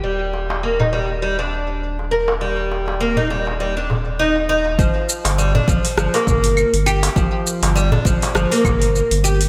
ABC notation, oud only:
X:1
M:4/4
L:1/16
Q:"Swing 16ths" 1/4=101
K:Gm
V:1 name="Oud"
G,4 B, E G, z G, D4 z B z | G,4 B, E G, z G, D z2 E z E z | F,4 G, D F, z F, B,4 z G z | F,4 G, D F, z F, B,4 z G z |]